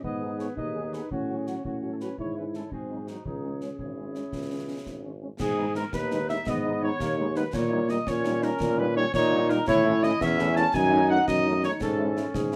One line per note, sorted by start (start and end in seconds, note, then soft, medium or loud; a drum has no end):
0.03 0.48 G#2 medium
0.03 0.58 B3 medium
0.03 1.11 G#4 medium
0.03 1.11 B4 soft
0.03 0.37 D#5 medium
0.03 concert bass drum medium
0.21 0.28 B3 soft
0.21 0.28 D#4 soft
0.21 0.28 G#4 soft
0.39 0.45 B3 soft
0.39 0.46 D#4 soft
0.39 0.46 G#4 soft
0.39 0.48 C#5 medium
0.39 snare soft
0.57 1.02 D#2 medium
0.57 1.11 D#4 medium
0.57 0.95 D#5 medium
0.57 concert bass drum medium
0.75 0.82 B3 soft
0.75 0.81 D#4 soft
0.75 0.82 G#4 soft
0.93 0.99 B3 soft
0.93 0.99 D#4 soft
0.93 0.99 G#4 soft
0.93 1.11 B4 medium
0.93 snare soft
1.11 1.56 A2 soft
1.11 1.61 C#4 medium
1.11 1.61 F#4 soft
1.11 1.40 F#4 medium
1.11 1.61 C#5 soft
1.11 concert bass drum medium
1.29 1.36 F#3 soft
1.29 1.35 C#4 soft
1.29 1.35 F#4 soft
1.38 1.48 G#4 medium
1.47 1.54 F#3 soft
1.47 1.54 C#4 soft
1.47 1.64 F#4 medium
1.47 1.54 F#4 soft
1.47 snare soft
1.64 2.09 A2 soft
1.64 2.14 C#4 soft
1.64 2.15 F#4 soft
1.64 1.77 F#4 medium
1.64 2.15 C#5 soft
1.64 concert bass drum medium
1.83 1.89 F#3 soft
1.83 1.89 C#4 soft
1.83 1.89 F#4 soft
1.92 1.96 A4 medium
2.00 2.07 F#3 soft
2.00 2.07 C#4 soft
2.00 2.07 F#4 soft
2.00 2.17 B4 medium
2.00 snare soft
2.18 2.63 G#2 medium
2.18 2.73 E4 medium
2.18 2.72 E4 soft
2.18 2.68 C#5 soft
2.18 2.36 C#5 medium
2.18 concert bass drum medium
2.36 2.42 G#3 soft
2.36 2.43 C#4 soft
2.36 2.43 E4 soft
2.36 2.45 B4 medium
2.54 2.61 G#3 soft
2.54 2.61 C#4 soft
2.54 2.60 E4 soft
2.54 2.71 A4 soft
2.54 snare soft
2.72 3.17 G#2 soft
2.72 3.07 C4 soft
2.72 3.22 F#4 soft
2.72 3.09 G#4 medium
2.72 3.22 C5 soft
2.72 concert bass drum medium
2.90 2.97 F#3 soft
2.90 2.97 C4 soft
2.90 2.97 D#4 soft
3.07 3.14 F#3 soft
3.07 3.14 C4 soft
3.07 3.25 D#4 soft
3.07 3.14 D#4 soft
3.07 snare soft
3.25 3.70 C#2 soft
3.25 5.09 C#4 soft
3.25 3.58 D#4 soft
3.25 3.77 G#4 soft
3.25 3.77 C#5 soft
3.25 concert bass drum medium
3.43 3.50 G#3 soft
3.43 3.50 C#4 soft
3.61 3.68 G#3 soft
3.61 3.68 C#4 soft
3.61 snare soft
3.78 4.19 G#1 soft
3.78 5.18 E4 soft
3.78 5.18 G#4 soft
3.78 5.18 C#5 soft
3.78 concert bass drum medium
3.97 4.04 G#3 soft
3.97 4.04 C#4 soft
4.15 4.21 G#3 soft
4.15 4.22 C#4 soft
4.15 snare soft
4.32 4.77 C#2 soft
4.32 concert bass drum medium
4.32 snare soft
4.51 4.57 G#3 soft
4.51 4.57 C#4 soft
4.69 4.75 G#3 soft
4.69 4.75 C#4 soft
4.86 5.31 G#1 soft
4.86 concert bass drum soft
4.86 snare soft
5.04 5.11 G#3 soft
5.04 5.11 C#4 soft
5.21 5.28 G#3 soft
5.21 5.28 C#4 soft
5.39 5.84 G#2 medium
5.39 5.73 G#4 medium
5.39 5.73 G#4 loud
5.39 concert bass drum medium
5.39 snare medium
5.39 crash medium
5.58 5.64 G#3 medium
5.58 5.64 B3 medium
5.58 5.64 D#4 medium
5.75 5.82 G#3 medium
5.75 5.82 B3 medium
5.75 5.82 D#4 medium
5.75 5.83 A#4 medium
5.75 5.92 A#4 medium
5.75 snare medium
5.93 6.38 D#2 medium
5.93 6.43 D#4 medium
5.93 6.26 B4 medium
5.93 6.27 B4 loud
5.93 concert bass drum medium
5.93 snare medium
6.11 6.18 G#3 medium
6.11 6.18 B3 medium
6.11 6.18 D#4 medium
6.11 snare medium
6.29 6.36 G#3 medium
6.29 6.36 B3 medium
6.29 6.36 D#4 medium
6.29 6.47 E5 medium
6.29 6.50 E5 loud
6.29 snare soft
6.46 6.91 G#2 medium
6.46 6.97 B3 medium
6.46 6.80 D#5 medium
6.46 6.83 D#5 medium
6.46 concert bass drum medium
6.46 snare medium
6.65 6.71 G#3 medium
6.65 6.71 B3 medium
6.65 6.71 D#4 medium
6.82 6.89 G#3 medium
6.82 6.89 B3 medium
6.82 6.89 D#4 medium
6.82 7.36 C#5 medium
6.82 7.38 C#5 loud
7.00 7.45 D#2 medium
7.00 7.17 A#3 medium
7.00 concert bass drum medium
7.00 snare medium
7.18 7.36 G#3 medium
7.18 7.25 G#3 medium
7.18 7.25 B3 medium
7.18 7.25 D#4 medium
7.35 7.42 G#3 medium
7.35 7.42 B3 medium
7.35 7.44 B3 medium
7.35 7.42 D#4 medium
7.35 7.44 B4 medium
7.35 7.55 B4 loud
7.35 snare soft
7.53 7.98 A#2 medium
7.53 8.03 A#3 medium
7.53 7.87 C#5 medium
7.53 7.91 C#5 loud
7.53 concert bass drum medium
7.53 snare medium
7.53 crash soft
7.71 7.77 G3 medium
7.71 7.78 A#3 medium
7.71 7.78 D#4 medium
7.89 7.95 G3 medium
7.89 7.95 A#3 medium
7.89 7.96 D#4 medium
7.89 8.09 D#5 loud
7.89 7.98 D#5 medium
7.89 snare medium
8.07 8.52 A#2 medium
8.07 9.10 C#4 loud
8.07 8.40 C#5 medium
8.07 8.45 C#5 loud
8.07 concert bass drum medium
8.07 snare medium
8.25 8.31 G3 medium
8.25 8.31 A#3 medium
8.25 8.31 D#4 medium
8.25 snare medium
8.42 8.49 G3 medium
8.42 8.49 A#3 medium
8.42 8.49 D#4 medium
8.42 8.79 A#4 loud
8.42 8.80 A#4 loud
8.42 snare medium
8.60 9.05 A#2 loud
8.60 concert bass drum medium
8.60 snare medium
8.78 8.84 G3 medium
8.78 8.84 A#3 medium
8.78 8.84 D#4 medium
8.78 8.96 B4 loud
8.78 8.87 B4 medium
8.96 9.03 G3 medium
8.96 9.03 A#3 medium
8.96 9.02 D#4 medium
8.96 9.13 C#5 loud
9.14 9.58 A#2 loud
9.14 9.64 D#4 loud
9.14 9.47 C#5 loud
9.14 9.51 C#5 loud
9.14 concert bass drum medium
9.14 snare medium
9.32 9.38 G3 medium
9.32 9.38 A#3 medium
9.32 9.38 D#4 medium
9.49 9.56 G3 medium
9.49 9.56 A#3 medium
9.49 9.56 D#4 medium
9.49 9.58 A#4 loud
9.49 9.67 A#4 loud
9.49 snare soft
9.67 10.12 A2 loud
9.67 10.17 E4 loud
9.67 10.05 C#5 loud
9.67 10.01 C#5 loud
9.67 concert bass drum medium
9.67 snare medium
9.67 crash soft
9.85 9.92 A3 medium
9.85 9.92 C#4 medium
9.85 9.92 E4 medium
10.03 10.10 A3 medium
10.03 10.10 C#4 medium
10.03 10.09 E4 medium
10.03 10.20 D#5 loud
10.03 10.21 D#5 loud
10.03 snare medium
10.21 10.65 E2 loud
10.21 10.71 C#4 loud
10.21 10.54 E5 loud
10.21 10.55 E5 loud
10.21 concert bass drum medium
10.21 snare medium
10.39 10.45 A3 loud
10.39 10.45 C#4 medium
10.39 10.45 E4 medium
10.39 snare medium
10.56 10.62 A3 medium
10.56 10.62 C#4 medium
10.56 10.62 E4 medium
10.56 10.74 A5 loud
10.56 10.76 A5 loud
10.56 snare medium
10.74 11.19 F#2 loud
10.74 11.77 D#4 loud
10.74 11.09 G#5 loud
10.74 11.10 G#5 loud
10.74 concert bass drum medium
10.74 snare medium
10.92 10.98 A3 medium
10.92 10.99 C#4 medium
10.92 10.98 D#4 medium
11.10 11.16 A3 medium
11.10 11.16 C#4 medium
11.10 11.16 D#4 medium
11.10 11.26 F#5 loud
11.10 11.18 F#5 loud
11.28 11.67 F#2 medium
11.28 11.61 D#5 medium
11.28 11.61 D#5 loud
11.28 concert bass drum medium
11.28 snare medium
11.45 11.52 A3 medium
11.45 11.52 C#4 medium
11.45 11.52 D#4 medium
11.63 11.70 A3 medium
11.63 11.70 C#4 medium
11.63 11.70 D#4 medium
11.63 11.80 C#5 medium
11.63 11.72 C#5 loud
11.63 snare soft
11.81 12.26 G#2 medium
11.81 12.56 C#4 medium
11.81 12.31 A4 loud
11.81 12.14 A4 medium
11.81 concert bass drum medium
11.81 snare medium
11.81 crash soft
11.99 12.05 G#3 medium
11.99 12.05 C#4 medium
11.99 12.05 E4 medium
12.17 12.23 G#3 medium
12.17 12.23 C#4 medium
12.17 12.23 E4 medium
12.17 snare soft
12.34 12.56 G#2 medium
12.34 12.56 G#4 medium
12.34 concert bass drum medium
12.34 snare medium
12.52 12.56 G#3 medium
12.52 12.56 C#4 medium
12.52 12.56 E4 medium
12.52 snare medium